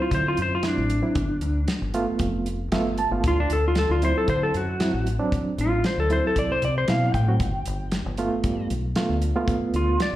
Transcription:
0.00 0.40 F#3 medium
0.00 0.40 C4 medium
0.00 0.40 E4 medium
0.00 0.13 F4 medium
0.11 0.35 D3 medium
0.11 0.26 C5 medium
0.11 kick medium
0.11 closed hi-hat medium
0.28 0.39 F4 medium
0.37 0.61 F#2 medium
0.37 closed hi-hat medium
0.42 0.53 C5 medium
0.55 0.65 F4 medium
0.63 0.91 F#3 medium
0.63 0.91 C4 medium
0.63 0.91 E4 medium
0.63 snare loud
0.63 closed hi-hat medium
0.68 1.67 D4 medium
0.77 1.01 A1 medium
0.90 closed hi-hat medium
1.02 1.15 F#3 medium
1.02 1.15 C4 medium
1.02 1.15 E4 medium
1.15 1.39 G1 loud
1.15 kick loud
1.15 closed hi-hat medium
1.41 1.65 D2 medium
1.41 closed hi-hat medium
1.68 snare medium
1.68 closed hi-hat medium
1.82 2.05 G1 medium
1.94 2.48 A3 medium
1.94 2.48 B3 medium
1.94 2.48 F4 medium
1.94 closed hi-hat medium
2.19 2.68 F1 loud
2.19 kick medium
2.19 closed hi-hat medium
2.46 closed hi-hat medium
2.72 3.07 G1 medium
2.72 2.99 A3 medium
2.72 2.99 B3 medium
2.72 2.99 F4 medium
2.72 2.96 E5 medium
2.72 snare loud
2.72 closed hi-hat medium
2.98 3.22 A5 medium
2.98 closed hi-hat medium
3.11 3.23 G1 medium
3.11 3.24 A3 medium
3.11 3.24 B3 medium
3.11 3.24 F4 medium
3.24 3.47 D2 loud
3.24 3.39 F4 medium
3.24 kick loud
3.24 closed hi-hat medium
3.40 3.51 D4 loud
3.50 3.86 D2 medium
3.50 3.64 A4 medium
3.50 closed hi-hat medium
3.68 3.78 F4 medium
3.75 3.90 A4 medium
3.75 snare loud
3.75 closed hi-hat medium
3.89 4.13 D2 medium
3.89 4.03 F4 medium
4.02 4.56 F#3 medium
4.02 4.56 C4 medium
4.02 4.56 E4 medium
4.02 4.16 C5 medium
4.02 closed hi-hat medium
4.18 4.29 A4 medium
4.28 4.52 D3 loud
4.28 4.42 C5 loud
4.28 kick medium
4.28 closed hi-hat medium
4.43 4.54 A4 medium
4.54 4.78 F#2 medium
4.54 5.06 F#4 medium
4.54 closed hi-hat medium
4.80 5.07 F#3 medium
4.80 5.07 C4 medium
4.80 5.07 E4 medium
4.80 snare loud
4.80 closed hi-hat medium
4.93 5.17 A1 medium
5.07 closed hi-hat medium
5.19 5.82 F#3 medium
5.19 5.82 C4 medium
5.19 5.82 D4 medium
5.32 kick loud
5.32 closed hi-hat medium
5.58 5.82 A1 medium
5.58 5.85 F4 loud
5.58 closed hi-hat medium
5.84 5.98 C5 medium
5.84 snare medium
5.84 closed hi-hat medium
5.98 6.21 D2 medium
5.98 6.11 A4 medium
6.10 6.64 F#3 medium
6.10 6.64 C4 medium
6.10 6.64 E4 medium
6.10 6.24 C5 loud
6.10 closed hi-hat medium
6.27 6.37 A4 medium
6.36 6.60 C2 medium
6.36 6.50 D5 medium
6.36 kick medium
6.36 closed hi-hat medium
6.52 6.63 C5 medium
6.62 6.85 C3 medium
6.62 6.76 D5 medium
6.62 closed hi-hat medium
6.78 6.89 C5 medium
6.88 7.12 B2 medium
6.88 7.15 F#3 medium
6.88 7.15 C4 medium
6.88 7.15 E4 medium
6.88 7.14 F5 medium
6.88 snare loud
6.88 closed hi-hat medium
7.14 7.37 A2 medium
7.14 8.66 G5 medium
7.14 kick medium
7.14 closed hi-hat medium
7.28 7.40 F#3 medium
7.28 7.40 C4 medium
7.28 7.40 F#4 medium
7.40 7.64 G1 loud
7.40 kick loud
7.40 closed hi-hat medium
7.66 8.02 G1 medium
7.66 closed hi-hat medium
7.92 snare medium
7.92 closed hi-hat medium
8.06 8.29 G1 medium
8.17 8.72 A3 medium
8.17 8.72 B3 medium
8.17 8.72 F4 medium
8.17 closed hi-hat medium
8.44 8.67 G2 loud
8.44 kick medium
8.44 closed hi-hat medium
8.70 8.94 B1 medium
8.70 closed hi-hat medium
8.96 9.23 A3 medium
8.96 9.23 B3 medium
8.96 9.23 F4 medium
8.96 snare medium
8.96 closed hi-hat medium
9.09 9.33 D2 medium
9.22 closed hi-hat medium
9.36 9.98 A3 medium
9.36 9.98 B3 medium
9.36 9.98 F4 medium
9.48 kick loud
9.48 closed hi-hat medium
9.74 9.97 D2 medium
9.74 10.00 F4 loud
9.74 closed hi-hat medium
10.00 10.14 D5 medium
10.00 snare loud
10.00 closed hi-hat medium

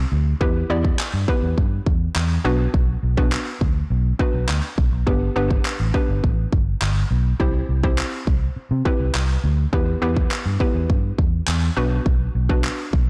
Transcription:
0.12 0.33 D2 medium
0.41 0.62 E2 loud
0.41 0.55 B3 medium
0.41 0.55 E4 medium
0.41 0.55 G4 medium
0.41 0.55 B4 medium
0.41 kick loud
0.70 0.91 E2 medium
0.70 0.99 B3 medium
0.70 0.99 E4 medium
0.70 0.99 G4 medium
0.70 0.99 D5 medium
0.85 kick medium
0.99 clap loud
1.14 1.24 G2 medium
1.28 1.86 B3 medium
1.28 1.86 E4 medium
1.28 1.86 G4 medium
1.28 1.86 B4 loud
1.28 kick medium
1.43 1.53 E2 medium
1.58 1.79 G2 loud
1.58 kick medium
1.86 2.08 E2 medium
1.86 kick medium
2.16 2.37 E2 loud
2.16 clap loud
2.45 2.66 B1 medium
2.45 3.03 B3 medium
2.45 3.03 D4 medium
2.45 3.03 F#4 medium
2.45 3.03 B4 medium
2.74 2.95 B1 loud
2.74 kick loud
3.03 3.35 B1 medium
3.17 3.68 B3 medium
3.17 3.68 D4 medium
3.17 3.68 F#4 medium
3.17 3.68 B4 medium
3.17 kick loud
3.32 clap loud
3.61 3.82 D2 medium
3.61 kick medium
3.90 4.12 B1 loud
4.19 4.63 B3 medium
4.19 4.63 D4 medium
4.19 4.63 F#4 medium
4.19 4.63 B4 medium
4.19 kick loud
4.34 4.45 B1 medium
4.49 4.59 D2 medium
4.49 clap loud
4.78 4.88 B1 medium
4.78 kick medium
4.92 5.03 B1 medium
5.07 5.21 B3 medium
5.07 5.21 D4 medium
5.07 5.21 G4 medium
5.07 5.21 B4 medium
5.07 kick loud
5.36 5.57 G1 loud
5.36 5.65 B3 medium
5.36 5.65 D4 medium
5.36 5.65 G4 medium
5.36 5.65 B4 medium
5.51 kick loud
5.65 clap loud
5.80 5.90 A1 medium
5.94 6.52 B3 medium
5.94 6.52 D4 medium
5.94 6.52 G4 medium
5.94 6.52 B4 medium
5.94 kick medium
6.09 6.19 G1 medium
6.24 6.45 A1 medium
6.24 kick medium
6.53 6.74 G1 medium
6.53 kick medium
6.82 7.03 G1 loud
6.82 clap loud
7.11 7.32 B1 medium
7.40 7.61 C2 loud
7.40 7.61 C4 medium
7.40 7.62 E4 medium
7.40 7.62 G4 medium
7.40 7.62 C5 loud
7.40 kick loud
7.69 8.01 C2 loud
7.83 8.34 C4 medium
7.83 8.34 E4 medium
7.83 8.34 G4 medium
7.83 8.34 C5 medium
7.83 kick medium
7.98 clap loud
8.27 8.48 C2 medium
8.27 kick medium
8.56 muted fingered electric bass stroke soft
8.71 8.82 C3 medium
8.85 9.29 C4 medium
8.85 9.29 E4 medium
8.85 9.29 G4 medium
8.85 9.29 B4 medium
8.85 kick medium
9.00 9.11 C2 medium
9.15 9.36 C2 loud
9.15 clap loud
9.44 9.65 D2 medium
9.73 9.94 E2 loud
9.73 9.87 B3 medium
9.73 9.87 E4 medium
9.73 9.87 G4 medium
9.73 9.87 B4 loud
9.73 kick loud
10.02 10.23 E2 medium
10.02 10.31 B3 medium
10.02 10.31 E4 medium
10.02 10.31 G4 medium
10.02 10.31 B4 loud
10.17 kick loud
10.31 clap loud
10.46 10.56 G2 medium
10.60 11.18 B3 medium
10.60 11.18 E4 medium
10.60 11.18 G4 medium
10.60 11.18 B4 loud
10.60 kick medium
10.75 10.85 E2 medium
10.90 11.11 G2 loud
10.90 kick medium
11.18 11.40 E2 medium
11.18 kick loud
11.47 11.69 E2 loud
11.47 clap loud
11.76 11.98 B1 medium
11.76 12.35 B3 medium
11.76 12.35 D4 medium
11.76 12.35 F#4 medium
11.76 12.35 B4 loud
12.06 12.27 B1 loud
12.06 kick loud
12.35 12.67 B1 loud
12.49 13.00 B3 medium
12.49 13.00 D4 medium
12.49 13.00 F#4 medium
12.49 13.00 B4 medium
12.49 kick loud
12.64 clap loud
12.93 13.10 B1 medium
12.93 kick medium

